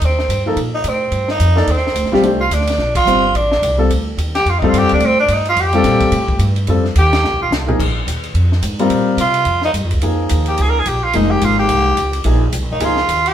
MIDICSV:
0, 0, Header, 1, 5, 480
1, 0, Start_track
1, 0, Tempo, 278164
1, 22, Time_signature, 4, 2, 24, 8
1, 23013, End_track
2, 0, Start_track
2, 0, Title_t, "Tenor saxophone"
2, 0, Program_c, 0, 66
2, 90, Note_on_c, 0, 60, 72
2, 820, Note_off_c, 0, 60, 0
2, 1280, Note_on_c, 0, 63, 94
2, 1527, Note_on_c, 0, 60, 71
2, 1553, Note_off_c, 0, 63, 0
2, 2238, Note_off_c, 0, 60, 0
2, 2248, Note_on_c, 0, 63, 98
2, 2944, Note_on_c, 0, 60, 71
2, 2970, Note_off_c, 0, 63, 0
2, 3686, Note_off_c, 0, 60, 0
2, 4145, Note_on_c, 0, 65, 73
2, 4365, Note_on_c, 0, 62, 73
2, 4391, Note_off_c, 0, 65, 0
2, 5093, Note_off_c, 0, 62, 0
2, 5103, Note_on_c, 0, 65, 107
2, 5795, Note_on_c, 0, 62, 86
2, 5820, Note_off_c, 0, 65, 0
2, 6551, Note_off_c, 0, 62, 0
2, 7508, Note_on_c, 0, 67, 92
2, 7751, Note_on_c, 0, 65, 73
2, 7777, Note_off_c, 0, 67, 0
2, 7917, Note_on_c, 0, 63, 81
2, 7942, Note_off_c, 0, 65, 0
2, 8089, Note_on_c, 0, 65, 69
2, 8114, Note_off_c, 0, 63, 0
2, 8241, Note_on_c, 0, 67, 103
2, 8267, Note_off_c, 0, 65, 0
2, 8493, Note_off_c, 0, 67, 0
2, 8509, Note_on_c, 0, 62, 87
2, 8727, Note_on_c, 0, 60, 84
2, 8753, Note_off_c, 0, 62, 0
2, 8956, Note_off_c, 0, 60, 0
2, 8967, Note_on_c, 0, 62, 87
2, 9190, Note_on_c, 0, 63, 78
2, 9216, Note_off_c, 0, 62, 0
2, 9447, Note_off_c, 0, 63, 0
2, 9467, Note_on_c, 0, 65, 91
2, 9668, Note_on_c, 0, 67, 95
2, 9693, Note_off_c, 0, 65, 0
2, 11081, Note_off_c, 0, 67, 0
2, 12050, Note_on_c, 0, 67, 95
2, 12745, Note_off_c, 0, 67, 0
2, 12801, Note_on_c, 0, 65, 84
2, 12973, Note_off_c, 0, 65, 0
2, 15883, Note_on_c, 0, 65, 94
2, 16582, Note_off_c, 0, 65, 0
2, 16646, Note_on_c, 0, 63, 95
2, 16756, Note_off_c, 0, 63, 0
2, 18085, Note_on_c, 0, 67, 87
2, 18329, Note_on_c, 0, 68, 93
2, 18355, Note_off_c, 0, 67, 0
2, 18447, Note_on_c, 0, 70, 95
2, 18473, Note_off_c, 0, 68, 0
2, 18619, Note_on_c, 0, 68, 83
2, 18645, Note_off_c, 0, 70, 0
2, 18775, Note_on_c, 0, 67, 85
2, 18801, Note_off_c, 0, 68, 0
2, 19030, Note_on_c, 0, 65, 98
2, 19056, Note_off_c, 0, 67, 0
2, 19248, Note_on_c, 0, 63, 85
2, 19274, Note_off_c, 0, 65, 0
2, 19502, Note_on_c, 0, 67, 96
2, 19528, Note_off_c, 0, 63, 0
2, 19745, Note_on_c, 0, 65, 88
2, 19771, Note_off_c, 0, 67, 0
2, 19991, Note_off_c, 0, 65, 0
2, 20001, Note_on_c, 0, 67, 99
2, 21081, Note_off_c, 0, 67, 0
2, 21942, Note_on_c, 0, 63, 84
2, 22162, Note_on_c, 0, 65, 91
2, 22188, Note_off_c, 0, 63, 0
2, 22907, Note_on_c, 0, 67, 107
2, 22933, Note_off_c, 0, 65, 0
2, 23013, Note_off_c, 0, 67, 0
2, 23013, End_track
3, 0, Start_track
3, 0, Title_t, "Grand piano"
3, 0, Program_c, 1, 0
3, 796, Note_on_c, 1, 53, 68
3, 807, Note_on_c, 1, 58, 64
3, 808, Note_on_c, 1, 63, 59
3, 814, Note_on_c, 1, 69, 75
3, 967, Note_off_c, 1, 53, 0
3, 973, Note_off_c, 1, 58, 0
3, 973, Note_off_c, 1, 63, 0
3, 977, Note_off_c, 1, 69, 0
3, 2685, Note_on_c, 1, 58, 74
3, 2692, Note_on_c, 1, 63, 64
3, 2708, Note_on_c, 1, 74, 79
3, 2713, Note_on_c, 1, 69, 69
3, 2871, Note_off_c, 1, 58, 0
3, 2875, Note_off_c, 1, 63, 0
3, 2883, Note_off_c, 1, 74, 0
3, 2885, Note_off_c, 1, 69, 0
3, 3657, Note_on_c, 1, 60, 69
3, 3658, Note_on_c, 1, 55, 72
3, 3668, Note_on_c, 1, 65, 68
3, 3679, Note_on_c, 1, 67, 79
3, 3837, Note_off_c, 1, 60, 0
3, 3838, Note_off_c, 1, 55, 0
3, 3843, Note_off_c, 1, 65, 0
3, 3848, Note_off_c, 1, 67, 0
3, 3854, Note_on_c, 1, 57, 61
3, 3856, Note_on_c, 1, 62, 52
3, 3875, Note_on_c, 1, 67, 57
3, 3883, Note_on_c, 1, 72, 62
3, 4113, Note_off_c, 1, 57, 0
3, 4114, Note_off_c, 1, 62, 0
3, 4123, Note_off_c, 1, 67, 0
3, 4127, Note_off_c, 1, 72, 0
3, 5279, Note_on_c, 1, 55, 60
3, 5292, Note_on_c, 1, 60, 64
3, 5298, Note_on_c, 1, 65, 54
3, 5311, Note_on_c, 1, 72, 75
3, 5545, Note_off_c, 1, 55, 0
3, 5552, Note_off_c, 1, 60, 0
3, 5554, Note_off_c, 1, 65, 0
3, 5561, Note_off_c, 1, 72, 0
3, 6520, Note_on_c, 1, 55, 66
3, 6531, Note_on_c, 1, 60, 58
3, 6532, Note_on_c, 1, 65, 57
3, 6537, Note_on_c, 1, 69, 83
3, 6708, Note_off_c, 1, 55, 0
3, 6713, Note_off_c, 1, 60, 0
3, 6714, Note_off_c, 1, 65, 0
3, 6716, Note_off_c, 1, 69, 0
3, 7986, Note_on_c, 1, 55, 81
3, 7991, Note_on_c, 1, 60, 69
3, 7991, Note_on_c, 1, 65, 66
3, 8002, Note_on_c, 1, 69, 84
3, 8620, Note_off_c, 1, 55, 0
3, 8623, Note_off_c, 1, 60, 0
3, 8623, Note_off_c, 1, 65, 0
3, 8628, Note_off_c, 1, 69, 0
3, 9890, Note_on_c, 1, 55, 77
3, 9906, Note_on_c, 1, 60, 72
3, 9914, Note_on_c, 1, 65, 75
3, 9924, Note_on_c, 1, 69, 92
3, 10532, Note_off_c, 1, 55, 0
3, 10540, Note_off_c, 1, 60, 0
3, 10544, Note_off_c, 1, 65, 0
3, 10549, Note_off_c, 1, 69, 0
3, 11526, Note_on_c, 1, 55, 63
3, 11533, Note_on_c, 1, 60, 57
3, 11545, Note_on_c, 1, 65, 56
3, 11553, Note_on_c, 1, 69, 67
3, 11787, Note_off_c, 1, 55, 0
3, 11790, Note_off_c, 1, 60, 0
3, 11796, Note_off_c, 1, 65, 0
3, 11800, Note_off_c, 1, 69, 0
3, 13228, Note_on_c, 1, 53, 65
3, 13237, Note_on_c, 1, 58, 64
3, 13260, Note_on_c, 1, 63, 68
3, 13262, Note_on_c, 1, 68, 75
3, 13420, Note_off_c, 1, 53, 0
3, 13425, Note_off_c, 1, 58, 0
3, 13436, Note_off_c, 1, 63, 0
3, 13437, Note_off_c, 1, 68, 0
3, 15178, Note_on_c, 1, 55, 79
3, 15188, Note_on_c, 1, 60, 76
3, 15189, Note_on_c, 1, 65, 75
3, 15196, Note_on_c, 1, 70, 84
3, 15816, Note_off_c, 1, 55, 0
3, 15822, Note_off_c, 1, 60, 0
3, 15822, Note_off_c, 1, 65, 0
3, 15825, Note_off_c, 1, 70, 0
3, 17293, Note_on_c, 1, 53, 62
3, 17303, Note_on_c, 1, 58, 61
3, 17307, Note_on_c, 1, 63, 52
3, 17310, Note_on_c, 1, 68, 67
3, 18619, Note_off_c, 1, 53, 0
3, 18624, Note_off_c, 1, 58, 0
3, 18626, Note_off_c, 1, 63, 0
3, 18628, Note_off_c, 1, 68, 0
3, 19219, Note_on_c, 1, 53, 61
3, 19227, Note_on_c, 1, 58, 61
3, 19230, Note_on_c, 1, 63, 65
3, 19234, Note_on_c, 1, 56, 66
3, 20543, Note_off_c, 1, 53, 0
3, 20547, Note_off_c, 1, 58, 0
3, 20548, Note_off_c, 1, 63, 0
3, 20550, Note_off_c, 1, 56, 0
3, 21132, Note_on_c, 1, 53, 64
3, 21137, Note_on_c, 1, 58, 57
3, 21149, Note_on_c, 1, 63, 62
3, 21153, Note_on_c, 1, 68, 72
3, 21392, Note_off_c, 1, 53, 0
3, 21395, Note_off_c, 1, 58, 0
3, 21401, Note_off_c, 1, 63, 0
3, 21403, Note_off_c, 1, 68, 0
3, 22088, Note_on_c, 1, 53, 70
3, 22098, Note_on_c, 1, 58, 56
3, 22103, Note_on_c, 1, 68, 78
3, 22107, Note_on_c, 1, 63, 57
3, 22351, Note_off_c, 1, 53, 0
3, 22356, Note_off_c, 1, 58, 0
3, 22358, Note_off_c, 1, 68, 0
3, 22361, Note_off_c, 1, 63, 0
3, 23013, End_track
4, 0, Start_track
4, 0, Title_t, "Upright bass"
4, 0, Program_c, 2, 32
4, 13, Note_on_c, 2, 39, 79
4, 483, Note_off_c, 2, 39, 0
4, 491, Note_on_c, 2, 43, 92
4, 962, Note_off_c, 2, 43, 0
4, 970, Note_on_c, 2, 46, 84
4, 1436, Note_off_c, 2, 46, 0
4, 1447, Note_on_c, 2, 45, 82
4, 1910, Note_off_c, 2, 45, 0
4, 1921, Note_on_c, 2, 43, 79
4, 2396, Note_off_c, 2, 43, 0
4, 2406, Note_on_c, 2, 41, 92
4, 2879, Note_off_c, 2, 41, 0
4, 2886, Note_on_c, 2, 39, 79
4, 3347, Note_off_c, 2, 39, 0
4, 3358, Note_on_c, 2, 38, 85
4, 3501, Note_on_c, 2, 36, 57
4, 3527, Note_off_c, 2, 38, 0
4, 3661, Note_off_c, 2, 36, 0
4, 3671, Note_on_c, 2, 34, 68
4, 3817, Note_off_c, 2, 34, 0
4, 3827, Note_on_c, 2, 36, 84
4, 4300, Note_off_c, 2, 36, 0
4, 4310, Note_on_c, 2, 38, 94
4, 4785, Note_off_c, 2, 38, 0
4, 4795, Note_on_c, 2, 34, 85
4, 5256, Note_off_c, 2, 34, 0
4, 5267, Note_on_c, 2, 31, 86
4, 5748, Note_off_c, 2, 31, 0
4, 5756, Note_on_c, 2, 33, 82
4, 6233, Note_off_c, 2, 33, 0
4, 6253, Note_on_c, 2, 36, 94
4, 6721, Note_off_c, 2, 36, 0
4, 6730, Note_on_c, 2, 38, 88
4, 7190, Note_off_c, 2, 38, 0
4, 7200, Note_on_c, 2, 39, 95
4, 7674, Note_off_c, 2, 39, 0
4, 7684, Note_on_c, 2, 41, 85
4, 8151, Note_off_c, 2, 41, 0
4, 8161, Note_on_c, 2, 43, 84
4, 8320, Note_off_c, 2, 43, 0
4, 8320, Note_on_c, 2, 41, 70
4, 8476, Note_off_c, 2, 41, 0
4, 8487, Note_on_c, 2, 38, 71
4, 8627, Note_off_c, 2, 38, 0
4, 8638, Note_on_c, 2, 45, 96
4, 9102, Note_off_c, 2, 45, 0
4, 9112, Note_on_c, 2, 43, 80
4, 9584, Note_off_c, 2, 43, 0
4, 9594, Note_on_c, 2, 41, 89
4, 10065, Note_off_c, 2, 41, 0
4, 10076, Note_on_c, 2, 46, 99
4, 10543, Note_off_c, 2, 46, 0
4, 10553, Note_on_c, 2, 45, 101
4, 11009, Note_off_c, 2, 45, 0
4, 11020, Note_on_c, 2, 43, 102
4, 11503, Note_off_c, 2, 43, 0
4, 11524, Note_on_c, 2, 41, 84
4, 11989, Note_off_c, 2, 41, 0
4, 12000, Note_on_c, 2, 39, 101
4, 12467, Note_off_c, 2, 39, 0
4, 12478, Note_on_c, 2, 37, 91
4, 12627, Note_off_c, 2, 37, 0
4, 12627, Note_on_c, 2, 36, 51
4, 12780, Note_off_c, 2, 36, 0
4, 12791, Note_on_c, 2, 33, 74
4, 12942, Note_off_c, 2, 33, 0
4, 12953, Note_on_c, 2, 36, 89
4, 13429, Note_off_c, 2, 36, 0
4, 13453, Note_on_c, 2, 34, 85
4, 13909, Note_off_c, 2, 34, 0
4, 13920, Note_on_c, 2, 39, 89
4, 14383, Note_off_c, 2, 39, 0
4, 14393, Note_on_c, 2, 41, 87
4, 14870, Note_off_c, 2, 41, 0
4, 14879, Note_on_c, 2, 44, 92
4, 15350, Note_off_c, 2, 44, 0
4, 15360, Note_on_c, 2, 46, 87
4, 15813, Note_off_c, 2, 46, 0
4, 15823, Note_on_c, 2, 48, 102
4, 16306, Note_off_c, 2, 48, 0
4, 16313, Note_on_c, 2, 41, 86
4, 16791, Note_off_c, 2, 41, 0
4, 16803, Note_on_c, 2, 43, 98
4, 16970, Note_off_c, 2, 43, 0
4, 16970, Note_on_c, 2, 41, 61
4, 17124, Note_off_c, 2, 41, 0
4, 17134, Note_on_c, 2, 37, 70
4, 17285, Note_off_c, 2, 37, 0
4, 17305, Note_on_c, 2, 41, 90
4, 17768, Note_off_c, 2, 41, 0
4, 17788, Note_on_c, 2, 39, 96
4, 18249, Note_off_c, 2, 39, 0
4, 18271, Note_on_c, 2, 37, 90
4, 18731, Note_off_c, 2, 37, 0
4, 18741, Note_on_c, 2, 34, 92
4, 19206, Note_off_c, 2, 34, 0
4, 19227, Note_on_c, 2, 29, 84
4, 19689, Note_off_c, 2, 29, 0
4, 19704, Note_on_c, 2, 32, 99
4, 20162, Note_off_c, 2, 32, 0
4, 20172, Note_on_c, 2, 36, 90
4, 20642, Note_off_c, 2, 36, 0
4, 20659, Note_on_c, 2, 37, 91
4, 21121, Note_off_c, 2, 37, 0
4, 21131, Note_on_c, 2, 34, 91
4, 21602, Note_off_c, 2, 34, 0
4, 21613, Note_on_c, 2, 36, 92
4, 21778, Note_off_c, 2, 36, 0
4, 21778, Note_on_c, 2, 34, 67
4, 21919, Note_off_c, 2, 34, 0
4, 21930, Note_on_c, 2, 32, 71
4, 22084, Note_off_c, 2, 32, 0
4, 22091, Note_on_c, 2, 37, 84
4, 22562, Note_off_c, 2, 37, 0
4, 22577, Note_on_c, 2, 39, 91
4, 23013, Note_off_c, 2, 39, 0
4, 23013, End_track
5, 0, Start_track
5, 0, Title_t, "Drums"
5, 27, Note_on_c, 9, 51, 61
5, 199, Note_off_c, 9, 51, 0
5, 322, Note_on_c, 9, 38, 38
5, 495, Note_off_c, 9, 38, 0
5, 514, Note_on_c, 9, 44, 59
5, 514, Note_on_c, 9, 51, 68
5, 687, Note_off_c, 9, 44, 0
5, 687, Note_off_c, 9, 51, 0
5, 978, Note_on_c, 9, 51, 57
5, 1150, Note_off_c, 9, 51, 0
5, 1448, Note_on_c, 9, 44, 47
5, 1448, Note_on_c, 9, 51, 69
5, 1621, Note_off_c, 9, 44, 0
5, 1621, Note_off_c, 9, 51, 0
5, 1927, Note_on_c, 9, 51, 57
5, 2100, Note_off_c, 9, 51, 0
5, 2214, Note_on_c, 9, 38, 46
5, 2387, Note_off_c, 9, 38, 0
5, 2412, Note_on_c, 9, 44, 56
5, 2412, Note_on_c, 9, 51, 66
5, 2585, Note_off_c, 9, 44, 0
5, 2585, Note_off_c, 9, 51, 0
5, 2706, Note_on_c, 9, 38, 47
5, 2878, Note_off_c, 9, 38, 0
5, 2890, Note_on_c, 9, 51, 62
5, 3054, Note_on_c, 9, 38, 28
5, 3062, Note_off_c, 9, 51, 0
5, 3223, Note_off_c, 9, 38, 0
5, 3223, Note_on_c, 9, 38, 43
5, 3375, Note_on_c, 9, 44, 53
5, 3375, Note_on_c, 9, 51, 69
5, 3396, Note_off_c, 9, 38, 0
5, 3545, Note_on_c, 9, 38, 28
5, 3547, Note_off_c, 9, 44, 0
5, 3547, Note_off_c, 9, 51, 0
5, 3695, Note_off_c, 9, 38, 0
5, 3695, Note_on_c, 9, 38, 44
5, 3856, Note_on_c, 9, 51, 55
5, 3867, Note_off_c, 9, 38, 0
5, 4029, Note_off_c, 9, 51, 0
5, 4335, Note_on_c, 9, 44, 59
5, 4335, Note_on_c, 9, 51, 68
5, 4503, Note_on_c, 9, 38, 28
5, 4508, Note_off_c, 9, 44, 0
5, 4508, Note_off_c, 9, 51, 0
5, 4614, Note_on_c, 9, 51, 75
5, 4659, Note_off_c, 9, 38, 0
5, 4659, Note_on_c, 9, 38, 48
5, 4787, Note_off_c, 9, 51, 0
5, 4808, Note_off_c, 9, 38, 0
5, 4808, Note_on_c, 9, 38, 38
5, 4980, Note_off_c, 9, 38, 0
5, 5093, Note_on_c, 9, 36, 62
5, 5096, Note_on_c, 9, 51, 71
5, 5266, Note_off_c, 9, 36, 0
5, 5269, Note_off_c, 9, 51, 0
5, 5298, Note_on_c, 9, 44, 53
5, 5471, Note_off_c, 9, 44, 0
5, 5780, Note_on_c, 9, 51, 60
5, 5953, Note_off_c, 9, 51, 0
5, 6066, Note_on_c, 9, 38, 56
5, 6238, Note_off_c, 9, 38, 0
5, 6262, Note_on_c, 9, 44, 60
5, 6262, Note_on_c, 9, 51, 72
5, 6434, Note_off_c, 9, 44, 0
5, 6434, Note_off_c, 9, 51, 0
5, 6739, Note_on_c, 9, 51, 64
5, 6911, Note_off_c, 9, 51, 0
5, 7220, Note_on_c, 9, 44, 51
5, 7220, Note_on_c, 9, 51, 62
5, 7393, Note_off_c, 9, 44, 0
5, 7393, Note_off_c, 9, 51, 0
5, 7507, Note_on_c, 9, 38, 44
5, 7507, Note_on_c, 9, 51, 51
5, 7680, Note_off_c, 9, 38, 0
5, 7680, Note_off_c, 9, 51, 0
5, 7703, Note_on_c, 9, 51, 54
5, 7876, Note_off_c, 9, 51, 0
5, 7978, Note_on_c, 9, 36, 59
5, 8150, Note_off_c, 9, 36, 0
5, 8175, Note_on_c, 9, 44, 55
5, 8175, Note_on_c, 9, 51, 77
5, 8347, Note_off_c, 9, 44, 0
5, 8347, Note_off_c, 9, 51, 0
5, 8441, Note_on_c, 9, 51, 54
5, 8614, Note_off_c, 9, 51, 0
5, 8635, Note_on_c, 9, 51, 62
5, 8808, Note_off_c, 9, 51, 0
5, 9117, Note_on_c, 9, 44, 52
5, 9117, Note_on_c, 9, 51, 65
5, 9290, Note_off_c, 9, 44, 0
5, 9290, Note_off_c, 9, 51, 0
5, 9412, Note_on_c, 9, 51, 50
5, 9584, Note_off_c, 9, 51, 0
5, 9604, Note_on_c, 9, 51, 67
5, 9777, Note_off_c, 9, 51, 0
5, 9881, Note_on_c, 9, 51, 50
5, 10053, Note_off_c, 9, 51, 0
5, 10077, Note_on_c, 9, 38, 38
5, 10077, Note_on_c, 9, 44, 55
5, 10077, Note_on_c, 9, 51, 69
5, 10249, Note_off_c, 9, 38, 0
5, 10249, Note_off_c, 9, 44, 0
5, 10249, Note_off_c, 9, 51, 0
5, 10360, Note_on_c, 9, 51, 56
5, 10362, Note_on_c, 9, 36, 65
5, 10532, Note_off_c, 9, 51, 0
5, 10535, Note_off_c, 9, 36, 0
5, 10557, Note_on_c, 9, 51, 74
5, 10730, Note_off_c, 9, 51, 0
5, 10843, Note_on_c, 9, 36, 70
5, 11016, Note_off_c, 9, 36, 0
5, 11032, Note_on_c, 9, 44, 59
5, 11032, Note_on_c, 9, 51, 67
5, 11204, Note_off_c, 9, 44, 0
5, 11204, Note_off_c, 9, 51, 0
5, 11320, Note_on_c, 9, 51, 51
5, 11493, Note_off_c, 9, 51, 0
5, 11512, Note_on_c, 9, 51, 57
5, 11684, Note_off_c, 9, 51, 0
5, 11814, Note_on_c, 9, 38, 31
5, 11987, Note_off_c, 9, 38, 0
5, 12003, Note_on_c, 9, 44, 58
5, 12003, Note_on_c, 9, 51, 75
5, 12176, Note_off_c, 9, 44, 0
5, 12176, Note_off_c, 9, 51, 0
5, 12302, Note_on_c, 9, 38, 72
5, 12302, Note_on_c, 9, 51, 51
5, 12475, Note_off_c, 9, 38, 0
5, 12475, Note_off_c, 9, 51, 0
5, 12496, Note_on_c, 9, 38, 49
5, 12669, Note_off_c, 9, 38, 0
5, 12982, Note_on_c, 9, 38, 80
5, 12982, Note_on_c, 9, 44, 57
5, 13154, Note_off_c, 9, 38, 0
5, 13154, Note_off_c, 9, 44, 0
5, 13262, Note_on_c, 9, 43, 86
5, 13435, Note_off_c, 9, 43, 0
5, 13453, Note_on_c, 9, 36, 68
5, 13461, Note_on_c, 9, 49, 73
5, 13625, Note_off_c, 9, 36, 0
5, 13634, Note_off_c, 9, 49, 0
5, 13938, Note_on_c, 9, 44, 55
5, 13938, Note_on_c, 9, 51, 68
5, 14110, Note_off_c, 9, 44, 0
5, 14110, Note_off_c, 9, 51, 0
5, 14211, Note_on_c, 9, 51, 47
5, 14383, Note_off_c, 9, 51, 0
5, 14404, Note_on_c, 9, 51, 62
5, 14576, Note_off_c, 9, 51, 0
5, 14703, Note_on_c, 9, 38, 38
5, 14875, Note_off_c, 9, 38, 0
5, 14883, Note_on_c, 9, 44, 64
5, 14883, Note_on_c, 9, 51, 74
5, 15056, Note_off_c, 9, 44, 0
5, 15056, Note_off_c, 9, 51, 0
5, 15173, Note_on_c, 9, 51, 50
5, 15345, Note_off_c, 9, 51, 0
5, 15357, Note_on_c, 9, 51, 62
5, 15529, Note_off_c, 9, 51, 0
5, 15842, Note_on_c, 9, 44, 56
5, 15842, Note_on_c, 9, 51, 75
5, 16015, Note_off_c, 9, 44, 0
5, 16015, Note_off_c, 9, 51, 0
5, 16115, Note_on_c, 9, 51, 54
5, 16287, Note_off_c, 9, 51, 0
5, 16307, Note_on_c, 9, 51, 60
5, 16480, Note_off_c, 9, 51, 0
5, 16594, Note_on_c, 9, 38, 38
5, 16767, Note_off_c, 9, 38, 0
5, 16807, Note_on_c, 9, 44, 56
5, 16807, Note_on_c, 9, 51, 69
5, 16979, Note_off_c, 9, 44, 0
5, 16979, Note_off_c, 9, 51, 0
5, 17095, Note_on_c, 9, 51, 54
5, 17268, Note_off_c, 9, 51, 0
5, 17282, Note_on_c, 9, 51, 64
5, 17455, Note_off_c, 9, 51, 0
5, 17762, Note_on_c, 9, 44, 66
5, 17762, Note_on_c, 9, 51, 79
5, 17935, Note_off_c, 9, 44, 0
5, 17935, Note_off_c, 9, 51, 0
5, 18045, Note_on_c, 9, 51, 50
5, 18218, Note_off_c, 9, 51, 0
5, 18248, Note_on_c, 9, 51, 66
5, 18421, Note_off_c, 9, 51, 0
5, 18733, Note_on_c, 9, 44, 55
5, 18733, Note_on_c, 9, 51, 66
5, 18905, Note_off_c, 9, 44, 0
5, 18905, Note_off_c, 9, 51, 0
5, 19213, Note_on_c, 9, 51, 61
5, 19385, Note_off_c, 9, 51, 0
5, 19698, Note_on_c, 9, 44, 57
5, 19698, Note_on_c, 9, 51, 69
5, 19871, Note_off_c, 9, 44, 0
5, 19871, Note_off_c, 9, 51, 0
5, 20167, Note_on_c, 9, 51, 70
5, 20340, Note_off_c, 9, 51, 0
5, 20654, Note_on_c, 9, 44, 53
5, 20654, Note_on_c, 9, 51, 62
5, 20826, Note_off_c, 9, 44, 0
5, 20826, Note_off_c, 9, 51, 0
5, 20935, Note_on_c, 9, 51, 56
5, 21107, Note_off_c, 9, 51, 0
5, 21122, Note_on_c, 9, 51, 61
5, 21294, Note_off_c, 9, 51, 0
5, 21613, Note_on_c, 9, 44, 66
5, 21613, Note_on_c, 9, 51, 73
5, 21786, Note_off_c, 9, 44, 0
5, 21786, Note_off_c, 9, 51, 0
5, 22094, Note_on_c, 9, 51, 73
5, 22267, Note_off_c, 9, 51, 0
5, 22376, Note_on_c, 9, 38, 43
5, 22548, Note_off_c, 9, 38, 0
5, 22583, Note_on_c, 9, 44, 60
5, 22583, Note_on_c, 9, 51, 70
5, 22755, Note_off_c, 9, 44, 0
5, 22755, Note_off_c, 9, 51, 0
5, 22877, Note_on_c, 9, 51, 54
5, 23013, Note_off_c, 9, 51, 0
5, 23013, End_track
0, 0, End_of_file